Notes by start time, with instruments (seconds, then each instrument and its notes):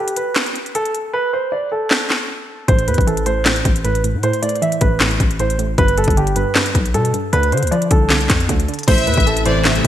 Already playing: grand piano G4
0.08 closed hi-hat
0.16 grand piano B4, closed hi-hat
0.36 snare, clap, closed hi-hat
0.46 closed hi-hat
0.56 closed hi-hat
0.66 closed hi-hat
0.75 grand piano A4, closed hi-hat
0.85 closed hi-hat
0.95 closed hi-hat
1.13 grand piano B4
1.33 grand piano C5
1.52 grand piano D5
1.72 grand piano A4
1.91 snare, clap
2.10 snare, clap
2.68 808-style bass A1, synth pluck A2, grand piano C5, kick, closed hi-hat
2.79 closed hi-hat
2.88 808-style bass E2, synth pluck A2, grand piano B4, closed hi-hat
2.94 808-style bass A1, kick, closed hi-hat
3.01 closed hi-hat
3.07 synth pluck E3, grand piano A4, closed hi-hat
3.17 closed hi-hat
3.26 synth pluck A2, grand piano C5, closed hi-hat
3.46 synth pluck A2, snare, clap, closed hi-hat
3.56 closed hi-hat
3.65 808-style bass A1, kick, closed hi-hat
3.76 closed hi-hat
3.84 synth pluck A2, grand piano B4, closed hi-hat
3.95 closed hi-hat
4.04 synth pluck A2, closed hi-hat
4.14 808-style bass A2
4.23 synth pluck A2, grand piano C5, closed hi-hat
4.33 closed hi-hat
4.42 synth pluck A2, grand piano D5, closed hi-hat
4.49 closed hi-hat
4.56 closed hi-hat
4.62 synth pluck E3, grand piano E5, closed hi-hat
4.72 closed hi-hat
4.81 808-style bass A1, synth pluck A2, grand piano B4, kick, closed hi-hat
5.00 synth pluck A2, snare, clap, closed hi-hat
5.11 closed hi-hat
5.20 808-style bass A1, kick, closed hi-hat
5.31 closed hi-hat
5.39 synth pluck A2, grand piano C5, closed hi-hat
5.50 closed hi-hat
5.59 synth pluck A2, closed hi-hat
5.78 808-style bass G1, synth pluck G2, grand piano B4, kick, closed hi-hat
5.88 closed hi-hat
5.97 synth pluck G2, grand piano A4, closed hi-hat
6.04 808-style bass G1, kick, closed hi-hat
6.10 closed hi-hat
6.17 synth pluck D3, grand piano G4, closed hi-hat
6.27 closed hi-hat
6.36 synth pluck G2, grand piano B4, closed hi-hat
6.55 synth pluck G2, snare, clap, closed hi-hat
6.66 closed hi-hat
6.75 808-style bass B1, kick, closed hi-hat
6.86 closed hi-hat
6.94 synth pluck G2, 808-style bass B2, grand piano A4, closed hi-hat
7.05 closed hi-hat
7.14 synth pluck G2, closed hi-hat
7.33 808-style bass D2, synth pluck D3, grand piano B4, closed hi-hat
7.43 closed hi-hat
7.52 808-style bass D3, synth pluck D3, grand piano C5, closed hi-hat
7.57 closed hi-hat
7.63 808-style bass D2, closed hi-hat
7.67 closed hi-hat
7.71 synth pluck F3, grand piano D5, closed hi-hat
7.82 closed hi-hat
7.91 808-style bass C2, synth pluck D3, grand piano A4, kick, closed hi-hat
8.10 synth pluck D3, snare, clap, closed hi-hat
8.21 closed hi-hat
8.30 808-style bass F2, kick, snare, clap, closed hi-hat
8.40 closed hi-hat
8.49 808-style bass D2, synth pluck D3, kick, closed hi-hat
8.60 closed hi-hat
8.68 synth pluck D3, closed hi-hat
8.74 closed hi-hat
8.79 closed hi-hat
8.83 closed hi-hat
8.88 808-style bass A1, synth pluck A2, analog synth pad C3 A3 E4, grand piano C5, violin section E5, kick, closed hi-hat, crash
8.98 closed hi-hat
9.07 808-style bass E2, synth pluck A2, grand piano B4, closed hi-hat
9.14 808-style bass A1, kick, closed hi-hat
9.20 closed hi-hat
9.27 synth pluck E3, grand piano A4, closed hi-hat
9.37 closed hi-hat
9.46 analog polysynth C2 A2 E3, synth pluck A2, grand piano C5, violin section D5, closed hi-hat
9.65 synth pluck A2, violin section E5, snare, clap, closed hi-hat
9.75 closed hi-hat